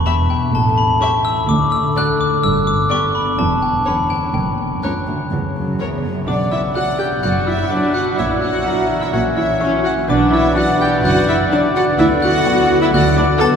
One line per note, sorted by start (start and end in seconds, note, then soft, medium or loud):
0.00 0.55 E2 soft
0.00 0.55 B3 soft
0.00 0.29 E4 soft
0.06 0.14 B3 soft
0.06 1.00 G4 soft
0.06 0.14 G4 soft
0.06 0.14 E5 soft
0.06 0.28 B5 medium
0.30 1.24 E4 soft
0.30 0.52 G5 medium
0.53 0.91 A1 medium
0.53 0.91 A2 medium
0.53 1.51 A2 medium
0.53 0.76 A5 medium
0.78 1.51 C#4 soft
0.78 0.99 B5 medium
1.00 1.08 C#4 soft
1.00 1.08 G4 medium
1.00 1.50 G4 soft
1.00 1.10 E5 soft
1.00 1.23 C#6 medium
1.25 1.50 E4 soft
1.25 1.47 E6 medium
1.47 1.85 D2 medium
1.47 1.86 D2 medium
1.47 2.45 D3 medium
1.47 1.71 D6 medium
1.72 3.12 D4 soft
1.72 1.94 E6 medium
1.96 2.04 D4 soft
1.96 2.05 F#4 soft
1.96 2.45 A4 soft
1.96 2.04 D5 soft
1.96 2.19 F#6 medium
2.20 2.45 F#4 soft
2.20 2.42 D6 medium
2.43 2.81 G1 medium
2.43 3.40 G2 medium
2.43 2.81 G2 medium
2.43 2.65 E6 medium
2.67 3.61 B3 soft
2.67 2.89 D6 medium
2.90 2.98 B3 soft
2.90 2.99 G4 medium
2.90 4.36 B4 soft
2.90 2.98 D5 soft
2.90 3.13 C#6 medium
3.14 3.40 D4 soft
3.14 3.37 B5 medium
3.37 3.76 E1 medium
3.37 4.36 E2 soft
3.37 3.76 E2 medium
3.37 3.61 A5 medium
3.62 4.36 B3 soft
3.62 3.84 G5 medium
3.85 3.94 C#4 soft
3.85 3.95 B4 soft
3.85 4.82 C#5 soft
3.85 3.93 C#5 soft
3.85 4.09 B5 medium
4.09 5.06 C#4 soft
4.09 4.33 G5 medium
4.34 4.73 F#1 medium
4.34 6.29 F#2 soft
4.34 4.73 F#2 medium
4.34 4.79 G5 medium
4.58 5.54 A#3 soft
4.83 4.91 C#2 medium
4.83 4.91 C#4 soft
4.83 4.92 A#4 soft
4.83 5.78 C#5 soft
4.83 4.91 C#5 soft
4.83 5.76 F#6 soft
5.08 5.16 D2 soft
5.08 6.03 C#4 soft
5.31 5.70 C#2 medium
5.31 5.40 E2 medium
5.31 6.29 C#3 soft
5.55 5.79 F#2 medium
5.55 6.30 A#3 soft
5.80 6.04 E2 medium
5.80 5.88 C#4 soft
5.80 5.88 A#4 soft
5.80 6.30 C#5 soft
5.80 5.88 C#5 soft
6.04 6.28 F#2 soft
6.04 6.30 C#4 soft
6.26 6.65 B1 medium
6.26 8.20 B2 soft
6.26 6.66 B2 medium
6.26 6.35 D4 medium
6.26 9.15 D4 soft
6.26 8.14 D5 soft
6.26 6.50 D5 medium
6.26 10.04 F#5 soft
6.26 6.50 D6 medium
6.52 6.60 E4 medium
6.52 7.46 B4 soft
6.52 6.60 E5 soft
6.52 6.74 E6 medium
6.75 6.93 F#3 soft
6.75 7.69 D4 soft
6.75 6.83 F#4 medium
6.75 6.93 F#4 soft
6.75 7.11 F#5 soft
6.75 6.99 F#5 medium
6.75 6.98 F#6 medium
6.98 7.93 B3 soft
6.98 7.07 G4 medium
6.98 7.06 G5 medium
6.98 7.21 G6 medium
7.23 7.61 F#1 medium
7.23 7.61 F#2 medium
7.23 11.02 F#3 soft
7.23 7.47 F#4 medium
7.23 7.67 D5 soft
7.23 7.31 F#5 medium
7.23 7.45 F#6 medium
7.47 7.71 E4 medium
7.47 8.20 B4 soft
7.47 7.70 E5 medium
7.47 7.69 E6 soft
7.70 7.87 F#3 soft
7.70 8.20 D4 soft
7.70 7.94 D4 medium
7.70 7.87 F#4 soft
7.70 8.17 B4 soft
7.70 7.95 D5 medium
7.70 8.06 F#5 soft
7.70 7.93 D6 medium
7.93 8.20 B3 soft
7.93 8.18 F#4 medium
7.93 8.03 F#5 medium
7.93 8.16 F#6 medium
8.17 8.55 A#1 medium
8.17 9.11 A#2 soft
8.17 8.56 A#2 medium
8.17 8.41 E4 medium
8.17 8.65 C#5 soft
8.17 10.05 E5 medium
8.17 8.27 E5 medium
8.17 8.41 E6 medium
8.41 8.99 F#4 medium
8.41 9.35 C#5 soft
8.41 9.00 F#5 medium
8.41 8.98 F#6 medium
8.65 8.81 F#3 soft
8.65 8.81 E4 soft
8.65 9.59 E4 soft
8.65 9.12 A#4 medium
8.65 9.01 E5 soft
8.89 9.84 E3 soft
9.01 9.06 E4 medium
9.01 9.13 E5 soft
9.01 9.12 E6 medium
9.12 9.51 A#1 medium
9.12 10.10 A#2 soft
9.12 9.51 A#2 medium
9.12 10.10 C#4 soft
9.12 9.20 F#4 medium
9.12 10.10 C#5 medium
9.12 9.21 F#5 medium
9.12 9.35 F#6 medium
9.36 9.45 E4 medium
9.36 10.10 C#5 soft
9.36 9.60 E5 soft
9.36 9.59 E6 medium
9.60 9.77 F#3 soft
9.60 9.84 C#4 medium
9.60 10.10 E4 soft
9.60 9.77 E4 soft
9.60 9.69 C#5 medium
9.60 9.96 E5 medium
9.60 9.83 C#6 medium
9.84 10.10 E3 soft
9.84 9.92 F#4 medium
9.84 9.93 F#5 medium
9.84 10.07 F#6 medium
10.08 10.46 B1 medium
10.08 10.46 B2 medium
10.08 12.01 B2 soft
10.08 13.56 B3 soft
10.08 10.32 D4 medium
10.08 10.56 B4 medium
10.08 13.56 D5 medium
10.08 10.17 D5 medium
10.08 13.56 F#5 medium
10.08 10.31 D6 medium
10.32 10.56 E4 medium
10.32 11.26 B4 soft
10.32 10.56 E5 medium
10.32 10.55 E6 medium
10.55 10.72 F#3 soft
10.55 10.72 D4 soft
10.55 11.51 D4 soft
10.55 10.64 F#4 medium
10.55 12.89 D5 medium
10.55 10.91 F#5 medium
10.55 10.80 F#5 medium
10.55 10.79 F#6 medium
10.80 11.74 B3 soft
10.80 11.03 G4 medium
10.80 10.88 G5 medium
10.80 11.03 G6 medium
11.03 11.41 F#1 medium
11.03 11.41 F#2 medium
11.03 12.69 F#3 soft
11.03 11.27 F#4 medium
11.03 11.28 F#5 medium
11.03 11.27 F#6 medium
11.27 11.36 E4 medium
11.27 12.45 B4 soft
11.27 11.36 E5 medium
11.27 11.50 E6 medium
11.51 11.67 F#3 medium
11.51 11.67 D4 medium
11.51 11.59 D4 medium
11.51 13.56 D4 soft
11.51 11.60 D5 medium
11.51 11.86 F#5 medium
11.51 11.74 D6 medium
11.75 13.56 B3 soft
11.75 11.84 F#4 medium
11.75 11.84 F#5 medium
11.75 11.98 F#6 medium
11.98 12.36 D2 medium
11.98 12.93 D3 medium
11.98 12.07 E4 medium
11.98 12.06 E5 medium
11.98 12.21 E6 medium
12.22 13.16 F#4 medium
12.22 12.81 F#4 medium
12.22 12.80 F#5 medium
12.22 12.77 F#6 medium
12.45 12.62 F#3 medium
12.45 12.62 B3 medium
12.45 13.39 B4 medium
12.45 12.81 F#5 medium
12.70 13.56 F#3 medium
12.82 12.93 E4 medium
12.82 12.86 E5 medium
12.82 12.93 E6 medium
12.93 13.31 D2 medium
12.93 13.56 D3 medium
12.93 13.02 F#4 medium
12.93 13.42 D5 medium
12.93 13.17 F#5 medium
12.93 13.16 F#6 medium
13.17 13.25 D4 medium
13.17 13.56 F#4 medium
13.17 13.26 D5 medium
13.17 13.39 D6 medium
13.39 13.56 F#3 medium
13.39 13.56 B3 medium
13.39 13.47 A4 loud
13.39 13.56 B4 soft
13.39 13.56 F#5 medium
13.39 13.49 A5 medium
13.39 13.56 A6 medium